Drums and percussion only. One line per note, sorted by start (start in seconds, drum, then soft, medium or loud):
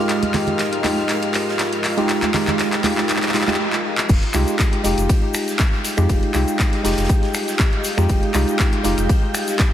0.09 clap medium
0.09 closed hi-hat medium
0.23 closed hi-hat soft
0.23 high conga medium
0.34 clap medium
0.34 closed hi-hat medium
0.34 open hi-hat loud
0.34 low conga medium
0.47 closed hi-hat soft
0.47 low conga medium
0.59 snare loud
0.59 clap medium
0.59 closed hi-hat medium
0.73 closed hi-hat medium
0.84 clap medium
0.84 closed hi-hat medium
0.84 open hi-hat loud
0.84 high conga medium
0.97 closed hi-hat soft
1.09 clap medium
1.09 closed hi-hat medium
1.23 closed hi-hat soft
1.33 clap medium
1.33 closed hi-hat medium
1.33 open hi-hat loud
1.48 snare soft
1.59 snare loud
1.59 clap medium
1.59 closed hi-hat medium
1.72 closed hi-hat soft
1.84 clap medium
1.84 open hi-hat medium
1.84 open hi-hat loud
1.97 closed hi-hat soft
2.09 clap medium
2.09 closed hi-hat medium
2.22 clap medium
2.22 closed hi-hat soft
2.22 high conga medium
2.34 clap medium
2.34 closed hi-hat medium
2.34 open hi-hat loud
2.34 low conga medium
2.47 clap medium
2.47 closed hi-hat soft
2.47 high conga medium
2.47 low conga medium
2.59 snare loud
2.59 clap medium
2.59 closed hi-hat medium
2.73 snare soft
2.73 clap medium
2.73 closed hi-hat medium
2.84 clap loud
2.84 closed hi-hat medium
2.84 open hi-hat loud
2.84 high conga medium
2.98 snare soft
2.98 clap medium
3.09 clap loud
3.09 closed hi-hat medium
3.16 clap medium
3.22 snare soft
3.22 clap medium
3.22 closed hi-hat soft
3.29 clap medium
3.34 clap loud
3.34 closed hi-hat medium
3.34 open hi-hat loud
3.41 clap medium
3.47 snare soft
3.47 clap medium
3.47 high conga medium
3.54 clap medium
3.73 clap medium
3.98 clap loud
4.09 kick loud
4.09 closed hi-hat medium
4.09 crash loud
4.09 shaker soft
4.23 closed hi-hat soft
4.34 finger snap medium
4.34 clap medium
4.34 closed hi-hat medium
4.34 open hi-hat loud
4.34 shaker medium
4.47 closed hi-hat soft
4.47 shaker soft
4.59 kick loud
4.59 snare loud
4.59 clap loud
4.59 closed hi-hat medium
4.59 shaker soft
4.73 closed hi-hat medium
4.84 closed hi-hat medium
4.84 open hi-hat loud
4.84 shaker medium
4.98 closed hi-hat medium
4.98 closed hi-hat soft
4.98 shaker soft
5.09 kick loud
5.09 closed hi-hat medium
5.09 shaker soft
5.34 finger snap medium
5.34 closed hi-hat medium
5.34 open hi-hat loud
5.34 shaker medium
5.48 snare soft
5.48 closed hi-hat soft
5.48 shaker soft
5.59 kick loud
5.59 snare loud
5.59 clap loud
5.59 closed hi-hat medium
5.59 shaker soft
5.73 closed hi-hat soft
5.84 open hi-hat medium
5.84 open hi-hat loud
5.84 shaker medium
5.97 finger snap medium
5.97 closed hi-hat soft
5.97 shaker medium
6.09 kick loud
6.09 closed hi-hat medium
6.09 shaker soft
6.23 closed hi-hat soft
6.34 finger snap medium
6.34 clap medium
6.34 closed hi-hat medium
6.34 open hi-hat loud
6.34 shaker loud
6.48 closed hi-hat soft
6.48 shaker medium
6.59 kick loud
6.59 snare loud
6.59 clap loud
6.59 closed hi-hat medium
6.59 shaker soft
6.73 snare soft
6.73 closed hi-hat medium
6.85 snare medium
6.85 closed hi-hat medium
6.85 open hi-hat loud
6.85 shaker medium
6.91 snare medium
6.91 closed hi-hat medium
6.97 snare medium
6.97 closed hi-hat medium
6.97 shaker medium
7.04 snare medium
7.04 closed hi-hat medium
7.09 kick loud
7.09 closed hi-hat medium
7.09 shaker soft
7.23 snare soft
7.23 closed hi-hat soft
7.34 finger snap medium
7.34 closed hi-hat medium
7.34 open hi-hat loud
7.34 shaker medium
7.48 snare soft
7.48 closed hi-hat soft
7.48 shaker medium
7.59 kick loud
7.59 snare loud
7.59 clap loud
7.59 closed hi-hat medium
7.59 shaker soft
7.73 closed hi-hat soft
7.84 closed hi-hat medium
7.84 open hi-hat loud
7.84 shaker medium
7.97 finger snap medium
7.97 snare soft
7.97 closed hi-hat soft
7.97 shaker medium
8.09 kick loud
8.09 closed hi-hat medium
8.09 shaker soft
8.23 closed hi-hat soft
8.34 finger snap medium
8.34 clap medium
8.34 closed hi-hat medium
8.34 open hi-hat loud
8.34 shaker medium
8.48 closed hi-hat soft
8.48 shaker medium
8.59 kick loud
8.59 snare loud
8.59 clap loud
8.59 closed hi-hat medium
8.59 shaker soft
8.73 closed hi-hat medium
8.85 closed hi-hat medium
8.85 open hi-hat loud
8.85 shaker medium
8.98 closed hi-hat soft
8.98 shaker medium
9.09 kick loud
9.09 closed hi-hat medium
9.09 shaker soft
9.34 finger snap medium
9.34 closed hi-hat medium
9.34 open hi-hat loud
9.34 shaker medium
9.47 snare soft
9.47 closed hi-hat soft
9.47 shaker medium
9.59 kick loud
9.59 snare loud
9.59 clap loud
9.59 closed hi-hat medium
9.59 shaker soft